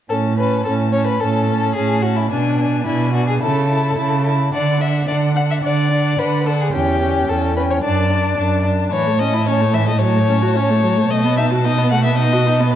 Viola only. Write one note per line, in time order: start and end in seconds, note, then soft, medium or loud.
0.10 0.38 C#4 soft
0.39 0.66 C#4 soft
0.66 0.93 C#4 soft
0.94 1.21 C#4 soft
1.22 1.49 C#4 soft
1.50 1.76 C#4 soft
1.77 2.04 C#4 soft
2.05 2.32 C#4 soft
2.32 2.59 D4 soft
2.60 2.86 D4 soft
2.87 3.14 D4 soft
3.15 3.41 D4 soft
3.42 3.69 E4 soft
3.70 3.96 E4 soft
3.97 4.25 E4 soft
4.26 4.53 E4 soft
4.54 4.80 D4 soft
4.81 5.07 D4 soft
5.08 5.35 D4 soft
5.36 5.63 D4 soft
5.64 5.91 D4 soft
5.91 6.18 D4 soft
6.19 6.46 D4 soft
6.47 6.73 D4 soft
6.74 7.01 C#4 soft
7.02 7.29 C#4 soft
7.29 7.56 C#4 soft
7.57 7.83 C#4 soft
7.85 8.11 D4 soft
8.11 8.37 D4 soft
8.38 8.64 D4 soft
8.65 8.92 D4 soft
8.93 9.08 E3 soft
9.07 9.22 A3 soft
9.20 9.35 C#4 soft
9.34 9.49 E4 soft
9.48 9.63 C#4 soft
9.61 9.75 A3 soft
9.74 9.89 E3 soft
9.88 10.01 A3 soft
10.02 10.16 F#3 soft
10.15 10.30 A3 soft
10.29 10.44 C#4 soft
10.42 10.57 F#4 soft
10.56 10.72 C#4 soft
10.70 10.85 A3 soft
10.83 10.99 F#3 soft
10.97 11.11 A3 soft
11.11 11.26 A3 medium
11.25 11.39 B3 soft
11.38 11.53 D#4 soft
11.51 11.67 F#4 soft
11.65 11.80 D#4 soft
11.78 11.93 B3 soft
11.92 12.07 A3 soft
12.05 12.18 B3 soft
12.19 12.34 D#4 soft
12.33 12.48 F#4 soft
12.47 12.62 D#4 soft
12.60 12.75 B3 soft